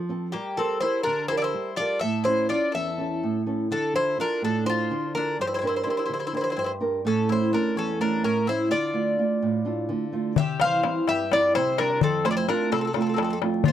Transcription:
Already playing: nylon-string guitar F3
0.09 nylon-string guitar C4 F4 A4
0.32 nylon-string guitar G3, mandolin A#3, bouzouki G4
0.57 mandolin C4, nylon-string guitar G4 A4 A#4, bouzouki A4
0.81 mandolin E4, nylon-string guitar G4 A4 A#4, bouzouki C5
1.03 nylon-string guitar D3, mandolin D4, bouzouki A#4
1.28 mandolin E4, nylon-string guitar G4 A4 A#4, bouzouki C5
1.37 mandolin F4, bouzouki D5
1.42 mandolin E4, bouzouki C5
1.54 nylon-string guitar G3
1.76 mandolin F4, nylon-string guitar G4 A4 A#4, bouzouki D5
1.99 nylon-string guitar A2, mandolin A4, bouzouki E5
2.24 nylon-string guitar C#4 E4 A4, mandolin E4, bouzouki C5
2.49 nylon-string guitar C#4 E4 A4, mandolin F4, bouzouki D5
2.72 nylon-string guitar E2, mandolin A4, bouzouki E5
2.98 nylon-string guitar C#4 E4 A4
3.23 nylon-string guitar A2
3.46 nylon-string guitar C#4 E4 A4
3.71 nylon-string guitar D3, mandolin D4, bouzouki A4
3.93 nylon-string guitar D4 F4 A4, mandolin E4, bouzouki C5
4.18 nylon-string guitar D4 F4 A4, mandolin D4, bouzouki A#4
4.42 nylon-string guitar A2, mandolin D4, bouzouki A4
4.65 nylon-string guitar D4 F4 A4, bouzouki C5
4.70 mandolin F4
4.91 nylon-string guitar D3
5.14 nylon-string guitar D4 F4 A4, mandolin D4, bouzouki A#4
5.39 nylon-string guitar G2, mandolin G4, bouzouki C5
5.47 mandolin E4, bouzouki C5
5.54 mandolin E4, bouzouki C5
5.59 mandolin E4, bouzouki C5
5.63 nylon-string guitar D4 G4 A#4
5.67 mandolin E4, bouzouki C5
5.76 mandolin E4, bouzouki C5
5.83 nylon-string guitar D4 G4, mandolin E4, bouzouki C5
5.88 mandolin E4, nylon-string guitar A#4, bouzouki C5
5.97 mandolin E4, bouzouki C5
6.05 nylon-string guitar D3, mandolin E4, bouzouki C5
6.13 mandolin E4, bouzouki C5
6.19 mandolin E4, bouzouki C5
6.27 mandolin E4, bouzouki C5
6.33 nylon-string guitar D4 G4 A#4, mandolin E4, bouzouki C5
6.41 mandolin E4, bouzouki C5
6.50 mandolin E4, bouzouki C5
6.57 nylon-string guitar G2, mandolin E4, bouzouki C5
6.64 mandolin E4, bouzouki C5
6.80 nylon-string guitar D4 G4 A#4
7.05 nylon-string guitar A2, mandolin C#4, bouzouki A4
7.29 nylon-string guitar A3 C#4 E4, mandolin E4, bouzouki C5
7.52 nylon-string guitar A3 C#4 E4, mandolin D4, bouzouki A#4
7.76 nylon-string guitar E2, mandolin C#4, bouzouki A4
8.00 nylon-string guitar A3 C#4 E4, mandolin D4, bouzouki A#4
8.23 nylon-string guitar A2, mandolin C#4, bouzouki A#4
8.47 nylon-string guitar A3 C#4 E4, mandolin E4, bouzouki C5
8.71 nylon-string guitar D3, mandolin F4, bouzouki D5
8.94 nylon-string guitar A3 D4 F4
9.19 nylon-string guitar A3 D4 F4
9.42 nylon-string guitar A2
9.65 nylon-string guitar A3 D4 F4
9.89 nylon-string guitar D3
10.12 nylon-string guitar A3 D4 F4
10.36 nylon-string guitar C3, mandolin G4, bouzouki E5, darbuka dum
10.60 nylon-string guitar E3 G3 C4, mandolin C5, bouzouki F5, darbuka tek
10.72 darbuka tek
10.83 nylon-string guitar G3 C4 E4, darbuka tek
11.08 nylon-string guitar G2, mandolin G4, bouzouki E5, darbuka tek
11.31 nylon-string guitar G3 C4 E4, mandolin F4, bouzouki D5, darbuka tek
11.55 nylon-string guitar C3, mandolin E4, bouzouki C5, darbuka tek
11.67 darbuka tek
11.78 nylon-string guitar G3 C4 E4, mandolin D4, bouzouki A#4, darbuka tek
11.90 darbuka tek
12.01 nylon-string guitar F2, mandolin C4, bouzouki A4, darbuka dum
12.24 nylon-string guitar A3 C4 F4, mandolin E4, bouzouki C5, darbuka tek
12.31 mandolin F4, bouzouki D5
12.37 mandolin E4, bouzouki C5, darbuka tek
12.48 nylon-string guitar A3 C4 F4, mandolin D4, bouzouki A#4, darbuka tek
12.72 nylon-string guitar C3, mandolin C4, bouzouki A4, darbuka tek
12.78 mandolin C4, bouzouki A4
12.85 mandolin C4, bouzouki A4
12.93 nylon-string guitar A3 C4 F4, mandolin C4, bouzouki A4, darbuka tek
13.01 mandolin C4, bouzouki A4
13.07 mandolin C4, bouzouki A4
13.14 mandolin C4, bouzouki A4
13.18 nylon-string guitar F2, darbuka tek
13.23 mandolin C4, bouzouki A4
13.29 mandolin C4, darbuka tek
13.33 bouzouki A4
13.42 nylon-string guitar A3 C4 F4, darbuka tek
13.54 darbuka tek
13.64 nylon-string guitar A#2, mandolin F4, darbuka dum
13.68 bouzouki C5

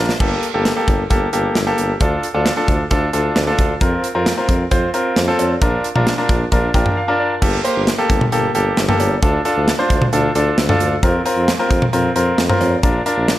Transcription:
Already playing: tuba A#1, grand piano D4 F4 A#4
0.09 snare
0.20 tuba G1, grand piano A#3 G4 A4, kick, crash
0.43 closed hi-hat
0.54 tuba G1, grand piano A#3 G4 A4
0.65 snare, closed hi-hat
0.77 grand piano A#3 G4 A4
0.88 tuba G1, kick, closed hi-hat
1.10 tuba G1, grand piano A#3 G4 A4, kick, closed hi-hat
1.33 tuba G1, grand piano A#3 G4 A4, closed hi-hat
1.55 tuba G1, snare, closed hi-hat
1.67 grand piano A#3 G4 A4
1.78 tuba G1, closed hi-hat
2.01 tuba D2, grand piano D4 F4 A4, kick, closed hi-hat
2.23 closed hi-hat
2.34 tuba D2, grand piano D4 F4 A4
2.46 snare, closed hi-hat
2.57 grand piano D4 F4 A4
2.68 tuba D2, kick, closed hi-hat
2.91 tuba D2, grand piano D4 F4 A4, kick, closed hi-hat
3.13 tuba D2, grand piano D4 F4 A4, closed hi-hat
3.36 tuba D2, snare, closed hi-hat
3.47 grand piano D4 F4 A4
3.58 tuba D2, kick, closed hi-hat
3.81 tuba F2, grand piano C4 F4 A#4, kick, closed hi-hat
4.04 closed hi-hat
4.15 tuba F2, grand piano C4 F4 A#4
4.26 snare, closed hi-hat
4.38 grand piano C4 F4 A#4
4.49 tuba F2, kick, closed hi-hat
4.71 tuba F2, grand piano C4 F4 C5, kick, closed hi-hat
4.94 grand piano C4 F4 A#4, closed hi-hat
5.16 tuba F2, snare, closed hi-hat
5.28 grand piano C4 F4 A4
5.39 tuba F2, closed hi-hat, cowbell
5.62 tuba A#1, grand piano D4 F4 A#4, kick, closed hi-hat
5.84 closed hi-hat
5.95 tuba A#1, grand piano D4 F4 A#4, mid tom
6.07 snare, closed hi-hat
6.18 grand piano D4 F4 A#4
6.29 tuba A#1, kick, closed hi-hat
6.52 tuba A#1, grand piano D4 F4 A#4, kick, closed hi-hat
6.74 tuba A#1, grand piano D4 F4 A#4 G5, kick, closed hi-hat
6.86 mid tom
6.97 grand piano F5
7.08 grand piano D4 F4 A#4
7.19 grand piano D5
7.42 tuba G1, grand piano A#3 G4 A4, kick, crash
7.64 grand piano A#3 G4 C5, closed hi-hat
7.76 tuba G1
7.87 snare, closed hi-hat
7.98 grand piano A#3 G4 A4
8.10 tuba G1, kick, closed hi-hat
8.21 mid tom
8.32 tuba G1, grand piano A#3 G4 A4, closed hi-hat
8.55 tuba G1, grand piano A#3 G4 A4, closed hi-hat
8.77 tuba G1, snare, closed hi-hat
8.89 grand piano A#3 G4 A4, mid tom
9.00 tuba G1, closed hi-hat, cowbell
9.22 tuba D2, grand piano D4 F4 A4, kick, closed hi-hat
9.45 grand piano D4 F4 A4, closed hi-hat
9.56 tuba D2
9.68 snare, closed hi-hat
9.79 grand piano D4 F4 C5
9.90 tuba D2, kick, closed hi-hat
10.02 mid tom
10.13 tuba D2, grand piano D4 F4 A4, closed hi-hat
10.35 tuba D2, grand piano D4 F4 A4, closed hi-hat
10.58 tuba D2, snare, closed hi-hat
10.69 grand piano D4 F4 A4, mid tom
10.80 tuba D2, closed hi-hat
11.03 tuba F2, grand piano C4 F4 A#4, kick, closed hi-hat
11.25 grand piano C4 F4 A#4, closed hi-hat
11.37 tuba F2
11.48 snare, closed hi-hat
11.59 grand piano C4 F4 A#4
11.71 tuba F2, kick, closed hi-hat
11.82 mid tom
11.93 tuba F2, grand piano C4 F4 A#4, closed hi-hat
12.16 tuba F2, grand piano C4 F4 A#4, closed hi-hat
12.38 tuba F2, snare, closed hi-hat
12.49 grand piano C4 F4 A#4, mid tom
12.61 tuba F2, closed hi-hat, cowbell
12.83 tuba A#1, grand piano D4 F4 A#4, kick, closed hi-hat
13.06 grand piano D4 F4 A#4, closed hi-hat
13.17 tuba A#1
13.28 snare, closed hi-hat

